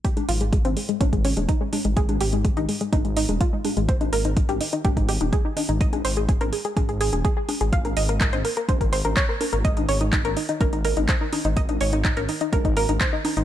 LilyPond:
<<
  \new Staff \with { instrumentName = "Synth arpeggio sound" } { \time 4/4 \key aes \major \tempo 4 = 125 g'16 aes16 f'16 aes16 aes16 c'16 aes16 aes16 des'16 aes16 des'16 aes16 ees'16 aes16 aes16 aes16 | aes'16 aes16 g'16 aes16 aes16 ees'16 aes16 aes16 ees'16 aes16 ees'16 aes16 f'16 aes16 aes16 aes16 | c''16 ees'16 bes'16 ees'16 ees'16 g'16 ees'16 ees'16 g'16 ees'16 g'16 ees'16 aes'16 ees'16 ees'16 ees'16 | ees''16 aes'16 c''16 aes'16 aes'16 bes'16 aes'16 aes'16 aes'16 aes'16 aes'16 aes'16 aes'16 aes'16 aes'16 aes'16 |
f''16 bes'16 ees''16 bes'16 bes'16 c''16 bes'16 bes'16 c''16 bes'16 c''16 bes'16 des''16 bes'16 bes'16 bes'16 | ees''16 ees'16 des''16 ees'16 ees'16 bes'16 ees'16 ees'16 bes'16 ees'16 bes'16 ees'16 c''16 ees'16 ees'16 ees'16 | ees''16 ees'16 des''16 ees'16 ees'16 bes'16 ees'16 ees'16 bes'16 ees'16 bes'16 ees'16 c''16 ees'16 ees'16 ees'16 | }
  \new Staff \with { instrumentName = "Detuned saw bass" } { \clef bass \time 4/4 \key aes \major r8 aes,,8. aes,,16 r8 aes,,8. ees,,16 r8. aes,,16~ | aes,,8 aes,,8. aes,,16 r8 aes,,8. ees,,16 r8. aes,,16~ | aes,,8 aes,,8. aes,,16 r8 aes,,8. ees,,16 r8. aes,,16~ | aes,,8 aes,,8. aes,,16 r8 aes,,8. ees,,16 r8. aes,,16~ |
aes,,8 aes,,8. aes,,16 r8 aes,,8. aes,,16 r8. aes,,16~ | aes,,8 aes,,8. aes,,16 r8 aes,,8. aes,,16 r8. aes,,16~ | aes,,8 aes,,8. aes,,16 r8 aes,,8. aes,,16 r8. aes,,16 | }
  \new DrumStaff \with { instrumentName = "Drums" } \drummode { \time 4/4 <hh bd>16 <cgho hh>16 hho16 hh16 <hh bd>16 <cgho hh>16 hho16 hh16 <cgho hh bd>16 <hh bd>16 hho16 <cgho hh>16 <hh bd>8 <cgho hho>16 hh16 | <hh bd>16 <cgho hh>16 hho16 hh16 <hh bd>16 <cgho hh>16 hho16 hh16 <cgho hh bd>16 hh16 hho16 <cgho hh>16 <hh bd>8 <cgho hho>16 hh16 | <hh bd>16 <cgho hh>16 hho16 hh16 <hh bd>16 <cgho hh>16 hho16 hh16 <cgho hh bd>16 <hh bd>16 hho16 <cgho hh>16 <hh bd>8 <cgho hho>16 hh16 | <hh bd>16 <cgho hh>16 hho16 hh16 <hh bd>16 <cgho hh>16 hho16 hh16 <cgho hh bd>16 hh16 hho16 <cgho hh>16 <hh bd>8 <cgho hho>16 hh16 |
<hh bd>16 <cgho hh>16 hho16 hh16 <hc hh bd>16 <cgho hh>16 hho16 hh16 <cgho hh bd>16 <hh bd>16 hho16 <cgho hh>16 <hc hh bd>8 <cgho hho>16 hh16 | <hh bd>16 <cgho hh>16 hho16 hh16 <hc hh bd>16 <cgho hh>16 hho16 hh16 <cgho hh bd>16 hh16 hho16 <cgho hh>16 <hc hh bd>8 <cgho hho>16 hh16 | <hh bd>16 <cgho hh>16 hho16 hh16 <hc hh bd>16 <cgho hh>16 hho16 hh16 <cgho hh bd>16 <hh bd>16 hho16 <cgho hh>16 <hc hh bd>8 <cgho hho>16 hh16 | }
>>